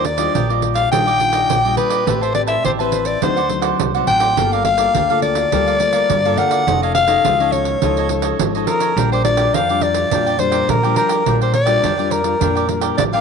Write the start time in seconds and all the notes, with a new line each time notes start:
Already playing: D#2 D#3
0.04 D5, muted cavaquinho stroke, pandeiro
0.17 G3 D4 F4 G4 D5 D#5, pandeiro
0.34 A#1 A#2 D4 G4 D5 D#5, pandeiro
0.49 G3 F4 G4 D5 D#5, pandeiro
0.62 pandeiro
0.75 F5, pandeiro
0.92 A#1 D#3 G3 D4 F4 G4 D5 D#5 G5, pandeiro
1.07 G4 D5 D#5, pandeiro
1.19 G3 D4 F4, muted cavaquinho stroke, pandeiro
1.33 G4 D5 D#5, pandeiro
1.50 A#1 A#2, pandeiro
1.64 G3 D4 F4 G4 D5 D#5, pandeiro
1.77 D4 G4 B4 D5 D#5, pandeiro
1.89 G4 D5 D#5, pandeiro
2.06 A1 A3 C4 G4 B4 C5 E5 A5, pandeiro
2.21 C5 E5 A5, pandeiro
2.34 C4 G4 B4 D5, muted cavaquinho stroke, pandeiro
2.47 C5 E5 A5, pandeiro
2.64 A1 E3 G4 C5 E5 A5, pandeiro
2.79 C4 G4 B4 C5 E5 A5, pandeiro
2.92 pandeiro
3.05 D5, pandeiro
3.21 D2 D3 F#3 C4 D4 D#4 C5 D5 F#5, pandeiro
3.36 C5 D5 F#5, pandeiro
3.49 F#3 C4 D#4, muted cavaquinho stroke, pandeiro
3.62 C5 D5 F#5, pandeiro
3.80 C2 A2, pandeiro
3.94 F#3 C4 D#4 C5 D5 F#5, pandeiro
4.07 A1 D4 C5 D5 F#5 G5, pandeiro
4.20 C5 D5 F#5, pandeiro
4.37 G1 G3 A#3 F4 G4 A4 A#4 D5 F5, pandeiro
4.52 A#4 D5 F5, pandeiro
4.64 F5, muted cavaquinho stroke, pandeiro
4.77 A#3 F4 A4 A#4 D5 F5, pandeiro
4.94 D2 D3 G4 A#4 D5 F5, pandeiro
5.10 A#3 F4 A4 A#4 D5 F5, pandeiro
5.22 D5, pandeiro
5.35 pandeiro
5.52 D2 G3 A#3 F4 G4 A4 A#4 D5 F5, pandeiro
5.67 A#4 D5 F5, pandeiro
5.80 A#3 F4 A4, pandeiro
5.92 A#4 D5 F5, pandeiro
6.10 G2 D3, pandeiro
6.25 A#3 F4 A4 A#4 D5 F5, pandeiro
6.37 G4 A#4 D5 F5 F#5, pandeiro
6.50 A#4 D5 F5, pandeiro
6.67 F1 F3 C#4 D#4 F4 A4 C#5 D#5, pandeiro
6.82 A4 C#5 D#5 F5, pandeiro
6.95 F5, muted cavaquinho stroke, pandeiro
7.08 C#4 D#4 A4 C#5 D#5, pandeiro
7.25 C#2 F3 F4 A4 C#5 D#5, pandeiro
7.40 C#4 D#4 A4 C#5 D#5, pandeiro
7.52 C#5, pandeiro
7.65 pandeiro
7.82 C#2 F3 C#4 D#4 F4 A4 C#5 D#5, pandeiro
7.97 A4 C#5 D#5, pandeiro
8.09 C#4 D#4 A4, muted cavaquinho stroke, pandeiro
8.22 A4 C#5 D#5, pandeiro
8.39 G#1 F3, pandeiro
8.55 C#4 D#4 A4 C#5 D#5, pandeiro
8.67 F4 A4 A#4 C#5 D#5, pandeiro
8.80 A4 C#5 D#5, pandeiro
8.96 A#1 A#2 G3 D4 F4 A#4 D5 G5, pandeiro
9.12 A#4 C5 D5 G5, pandeiro
9.25 G3 D4 F4 D5, muted cavaquinho stroke, pandeiro
9.37 A#4 D5 G5, pandeiro
9.54 F2 F3 D4 A#4 D5 F5 G5, pandeiro
9.69 G3 D4 F4 A#4 D5 G5, pandeiro
9.81 D5, pandeiro
9.95 pandeiro
10.11 F2 A#2 G3 D4 F4 A#4 D5 G5, pandeiro
10.26 A#4 D5 G5, pandeiro
10.39 G3 D4 F4 C5, muted cavaquinho stroke, pandeiro
10.51 A#4 D5 G5, pandeiro
10.69 A#2 F3 A#4, pandeiro
10.83 G3 D4 F4 A#4 D5 G5, pandeiro
10.96 D4 A#4 D5 G5, pandeiro
11.09 A#4 D5 G5, pandeiro
11.26 A#1 A#2 G3 D4 F4 A#4 D5 G5, pandeiro
11.41 A#4 C5 D5 G5, pandeiro
11.53 D5, muted cavaquinho stroke, pandeiro
11.66 G3 D4 F4 A#4 D5 G5, pandeiro
11.83 F2 F3 D4 A#4 D5 G5, pandeiro
11.98 G3 D4 F4 A#4 D5 G5, pandeiro
12.11 A#4, pandeiro
12.24 G3 D4 F4, pandeiro
12.40 F2 A#2 G3 D4 F4 A#4 D5 G5, pandeiro
12.55 A#4 D5 G5, pandeiro
12.68 G3 D4 F4, muted cavaquinho stroke, pandeiro
12.81 A#4 D5 G5, pandeiro
12.98 A1 F3 D5, pandeiro
13.13 G3 D4 F4 A#4 D5 F5 G5, pandeiro